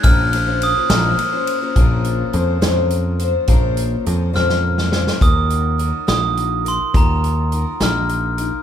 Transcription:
<<
  \new Staff \with { instrumentName = "Glockenspiel" } { \time 6/8 \key bes \minor \tempo 4. = 70 f'''4 ees'''8 f'''4 r8 | r2. | r4. f'''4. | ees'''4. ees'''4 c'''8 |
bes''4. f'''4. | }
  \new Staff \with { instrumentName = "Twelve-string acoustic guitar" } { \time 6/8 \key bes \minor <bes, f bes des' f' c''>8 <bes des' f' c''>16 <bes des' f' c''>8 <bes des' f' c''>16 <bes, f bes des' f' c''>8 <bes des' f' c''>16 <bes des' f' c''>8 <bes des' f' c''>16 | <bes, f bes des' f' c''>4 <bes des' f' c''>8 <bes, f bes des' f' c''>4 <bes des' f' c''>8 | <bes, f bes des' f' c''>4 <bes des' f' c''>8 <bes, f bes des' f' c''>4 <bes des' f' c''>8 | <ees ges ees' f' bes'>4 <ges ees' f' bes'>8 <ees ges ees' f' bes'>4 <ees' f' bes'>8 |
<ees ges ees' f' bes'>4 <ges ees' f' bes'>8 <ees ges ees' f' bes'>4 <ees' f' bes'>8 | }
  \new Staff \with { instrumentName = "Picked electric bass" } { \clef bass \time 6/8 \key bes \minor bes,,4. bes,,8 r4 | bes,,4 f,8 f,4. | bes,,4 f,8 f,4. | ees,4. bes,,4. |
ees,4. bes,,4. | }
  \new DrumStaff \with { instrumentName = "Drums" } \drummode { \time 6/8 <bd cymr>8 cymr8 cymr8 <cymr sn>8 cymr8 cymr8 | <hh bd>8 hh8 hh8 <hh sn>8 hh8 hh8 | <hh bd>8 hh8 hh8 sn16 sn8 sn16 sn16 sn16 | <hh bd>8 hh8 hh8 <hh sn>8 hh8 hh8 |
<hh bd>8 hh8 hh8 <hh sn>8 hh8 hh8 | }
>>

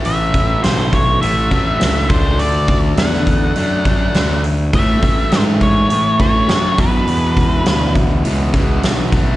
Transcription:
<<
  \new Staff \with { instrumentName = "Lead electric guitar" } { \time 4/4 \key e \mixolydian \tempo 4 = 102 e''4 c''8 cis''8 e''4. c''8 | d''8 d''8 fis''2~ fis''8 r8 | e''4 c''8 cis''4 cis''4 b'8~ | b'4. r2 r8 | }
  \new Staff \with { instrumentName = "Distorted electric guitar" } { \clef bass \time 4/4 \key e \mixolydian <a, e a>2 <a, e a>8 <a, e a>4 <d a d'>8~ | <d a d'>2 <d a d'>8 <d a d'>4 r8 | <a, e a>2~ <a, e a>8 <a, e a>8 <a, e a>8 <e, b, e>8~ | <e, b, e>2 <e, b, e>8 <e, b, e>4 <a, e a>8 | }
  \new Staff \with { instrumentName = "Fingered electric bass" } { \clef bass \time 4/4 \key e \mixolydian a,,4 b,,4 a,,4 cis,4 | d,4 e,4 fis,4 d,4 | a,8 r8 gis,4 a,4 fis,4 | e,4 d,4 cis,4 b,,4 | }
  \new DrumStaff \with { instrumentName = "Drums" } \drummode { \time 4/4 hho8 <hho bd>8 <hho sn>8 <hho bd>8 hho8 <hho bd>8 <hho sn>8 <hho bd>8 | hho8 <hho bd>8 <hho sn>16 sn16 <hho bd>8 hho8 <hho bd>8 <hho sn>8 hho8 | <hho bd>8 <hho bd>8 <hho sn>8 <hho bd>8 hho8 <hho bd>8 <hho sn>8 <hho bd>8 | hho8 <hho bd>8 <hho sn>8 <hho bd>8 hho8 <hho bd>8 <hho sn>8 <hho bd>8 | }
>>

